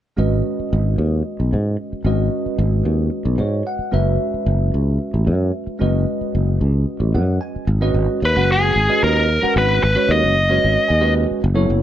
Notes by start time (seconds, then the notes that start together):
0.17 G#1 G#3 C#4 F#4 B4 D#5
0.60 muted fretless electric bass stroke
0.73 G#1
0.98 D#2
1.40 B1
1.53 G#2
1.93 muted fretless electric bass stroke
2.04 G#1 G#3 C#4 F#4 B4 D#5
2.46 muted fretless electric bass stroke
2.58 G#1
2.85 D#2
3.25 B1
3.38 G#2 C#5
3.67 F#5
3.79 muted fretless electric bass stroke
3.91 F#1 G#3 C#4 F#4 B4 E5
4.34 muted fretless electric bass stroke
4.46 F#1
4.74 C#2
5.14 A1
5.27 F#2
5.67 muted fretless electric bass stroke
5.79 F#1 G#3 C#4 F#4 B4 D#5
6.21 muted fretless electric bass stroke
6.35 F#1
6.61 C#2
7.00 A1
7.15 F#2 F#5
7.41 G#5
7.56 muted fretless electric bass stroke
7.67 G#1
7.81 G#3 C#4 F#4 B4 D#5
7.94 G#1
8.22 D#2 B4
8.35 F#1 G#3 C#4 F#4 B4 F#5
8.52 G#4
8.76 G#1
8.88 G#3 C#4 F#4 B4 D#5
9.03 D#2 A#4
9.42 G#3 C#4 F#4 B4 F#5, muted fretless electric bass stroke
9.56 G#1 B4
9.83 G#1 B4
9.95 G#3 C#4 F#4 B4 C#5
10.09 D#2 D#5
10.24 F#1
10.49 G#3 C#4 F#4 B4 C#5
10.64 G#1
10.88 D#2 G#5
11.01 G#3 C#4 F#4 B4 D#5
11.31 muted fretless electric bass stroke
11.44 F#1
11.54 F#3 B3 E4 A4 C#5
11.70 F#1